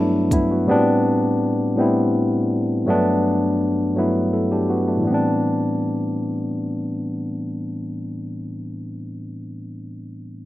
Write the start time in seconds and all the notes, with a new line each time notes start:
Already playing: G2 F#3 A3 B3 D4 E4
0.31 B3 E4, kick, closed hi-hat
0.51 B3 F#4
0.67 A2 G3 B3 C4
0.71 D4
1.76 A2 G3 B3 C4
1.81 E4
2.86 G2 F#3 A3 B3
2.90 D4
3.95 G2 F#3 A3 B3
3.99 E4
4.33 E4 A4
4.52 D4 G4
4.70 B3 F#4
4.88 A3 D4
4.97 A2 E3
5.04 G3 B3
5.11 C4 D4